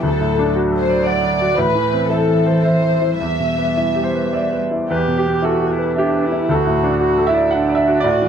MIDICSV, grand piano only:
0, 0, Header, 1, 2, 480
1, 0, Start_track
1, 0, Key_signature, 1, "minor"
1, 0, Tempo, 523104
1, 27, Time_signature, 3, 2, 24, 8
1, 2426, Tempo, 558140
1, 4826, Tempo, 519031
1, 7464, End_track
2, 0, Start_track
2, 0, Title_t, "Grand piano"
2, 0, Program_c, 0, 0
2, 0, Control_c, 0, 64, 127
2, 26, Note_on_c, 0, 38, 42
2, 44, Control_c, 0, 64, 0
2, 191, Note_on_c, 0, 45, 29
2, 210, Control_c, 0, 64, 127
2, 357, Note_on_c, 0, 62, 32
2, 447, Note_off_c, 0, 45, 0
2, 506, Note_on_c, 0, 66, 36
2, 610, Note_off_c, 0, 62, 0
2, 663, Note_on_c, 0, 69, 35
2, 763, Note_off_c, 0, 66, 0
2, 819, Note_on_c, 0, 74, 38
2, 920, Note_off_c, 0, 69, 0
2, 980, Note_on_c, 0, 78, 41
2, 1077, Note_off_c, 0, 74, 0
2, 1136, Note_on_c, 0, 74, 38
2, 1236, Note_off_c, 0, 78, 0
2, 1291, Note_on_c, 0, 66, 38
2, 1393, Note_off_c, 0, 74, 0
2, 1424, Note_off_c, 0, 38, 0
2, 1449, Note_on_c, 0, 45, 48
2, 1455, Note_off_c, 0, 66, 0
2, 1480, Control_c, 0, 64, 0
2, 1602, Note_on_c, 0, 52, 38
2, 1634, Control_c, 0, 64, 127
2, 1769, Note_on_c, 0, 60, 37
2, 1865, Note_off_c, 0, 52, 0
2, 1929, Note_on_c, 0, 64, 39
2, 2030, Note_off_c, 0, 60, 0
2, 2099, Note_on_c, 0, 69, 35
2, 2191, Note_off_c, 0, 64, 0
2, 2259, Note_on_c, 0, 72, 41
2, 2360, Note_off_c, 0, 69, 0
2, 2432, Note_on_c, 0, 76, 38
2, 2519, Note_off_c, 0, 72, 0
2, 2582, Note_on_c, 0, 72, 33
2, 2682, Note_off_c, 0, 76, 0
2, 2746, Note_on_c, 0, 64, 29
2, 2840, Note_off_c, 0, 72, 0
2, 2866, Note_off_c, 0, 45, 0
2, 2907, Note_off_c, 0, 64, 0
2, 2908, Note_on_c, 0, 40, 31
2, 2922, Control_c, 0, 64, 0
2, 3071, Note_on_c, 0, 47, 24
2, 3097, Control_c, 0, 64, 127
2, 3232, Note_on_c, 0, 59, 24
2, 3331, Note_off_c, 0, 47, 0
2, 3397, Note_on_c, 0, 64, 27
2, 3493, Note_off_c, 0, 59, 0
2, 3556, Note_on_c, 0, 67, 22
2, 3623, Note_on_c, 0, 72, 39
2, 3656, Note_off_c, 0, 64, 0
2, 3721, Note_on_c, 0, 71, 24
2, 3816, Note_off_c, 0, 67, 0
2, 3856, Note_off_c, 0, 72, 0
2, 3875, Note_on_c, 0, 74, 33
2, 3879, Note_on_c, 0, 76, 25
2, 3979, Note_off_c, 0, 71, 0
2, 4046, Note_on_c, 0, 71, 23
2, 4140, Note_off_c, 0, 76, 0
2, 4204, Note_on_c, 0, 64, 24
2, 4303, Note_off_c, 0, 71, 0
2, 4327, Note_off_c, 0, 74, 0
2, 4331, Note_off_c, 0, 40, 0
2, 4363, Note_off_c, 0, 64, 0
2, 4367, Note_on_c, 0, 40, 40
2, 4377, Note_on_c, 0, 71, 54
2, 4380, Control_c, 0, 64, 0
2, 4513, Note_on_c, 0, 47, 29
2, 4517, Control_c, 0, 64, 127
2, 4587, Note_off_c, 0, 71, 0
2, 4601, Note_on_c, 0, 67, 48
2, 4677, Note_on_c, 0, 59, 28
2, 4762, Note_off_c, 0, 47, 0
2, 4813, Note_off_c, 0, 67, 0
2, 4815, Note_on_c, 0, 64, 35
2, 4833, Note_on_c, 0, 69, 49
2, 4927, Note_off_c, 0, 59, 0
2, 4976, Note_on_c, 0, 67, 31
2, 5082, Note_off_c, 0, 64, 0
2, 5149, Note_on_c, 0, 71, 35
2, 5244, Note_off_c, 0, 67, 0
2, 5285, Note_off_c, 0, 69, 0
2, 5312, Note_on_c, 0, 76, 36
2, 5334, Note_on_c, 0, 67, 53
2, 5411, Note_off_c, 0, 71, 0
2, 5472, Note_on_c, 0, 71, 39
2, 5573, Note_off_c, 0, 76, 0
2, 5645, Note_on_c, 0, 64, 36
2, 5732, Note_off_c, 0, 71, 0
2, 5764, Note_off_c, 0, 40, 0
2, 5775, Note_off_c, 0, 67, 0
2, 5799, Note_on_c, 0, 38, 46
2, 5802, Note_off_c, 0, 64, 0
2, 5817, Control_c, 0, 64, 0
2, 5819, Note_on_c, 0, 69, 59
2, 5965, Note_on_c, 0, 45, 35
2, 5976, Control_c, 0, 64, 127
2, 6122, Note_on_c, 0, 62, 38
2, 6213, Note_off_c, 0, 45, 0
2, 6249, Note_off_c, 0, 69, 0
2, 6274, Note_on_c, 0, 66, 42
2, 6369, Note_off_c, 0, 62, 0
2, 6440, Note_on_c, 0, 69, 36
2, 6521, Note_on_c, 0, 76, 71
2, 6524, Note_off_c, 0, 66, 0
2, 6590, Note_on_c, 0, 74, 43
2, 6688, Note_off_c, 0, 69, 0
2, 6737, Note_off_c, 0, 76, 0
2, 6743, Note_on_c, 0, 78, 60
2, 6845, Note_off_c, 0, 74, 0
2, 6914, Note_on_c, 0, 74, 41
2, 6966, Note_on_c, 0, 76, 65
2, 6968, Note_off_c, 0, 78, 0
2, 7080, Note_on_c, 0, 66, 42
2, 7166, Note_off_c, 0, 74, 0
2, 7189, Note_off_c, 0, 38, 0
2, 7198, Note_off_c, 0, 76, 0
2, 7202, Note_on_c, 0, 74, 80
2, 7233, Note_off_c, 0, 66, 0
2, 7236, Note_on_c, 0, 45, 54
2, 7241, Control_c, 0, 64, 0
2, 7391, Control_c, 0, 64, 127
2, 7395, Note_on_c, 0, 52, 35
2, 7464, Note_off_c, 0, 45, 0
2, 7464, Note_off_c, 0, 52, 0
2, 7464, Note_off_c, 0, 74, 0
2, 7464, End_track
0, 0, End_of_file